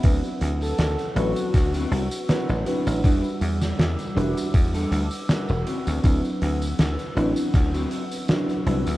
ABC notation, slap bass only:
X:1
M:4/4
L:1/16
Q:"Swing 16ths" 1/4=80
K:Dmix
V:1 name="Slap bass" clef=bass
D,, z D,,2 D,, z A,,, z D,,2 C,, z2 A,,, z A,,, | E,, z E,,2 E,, z E,,, z E,,2 D,, z2 E,,, z D,, | D,, z D,,2 D,, z A,,, z D,,2 z4 C,, D,, |]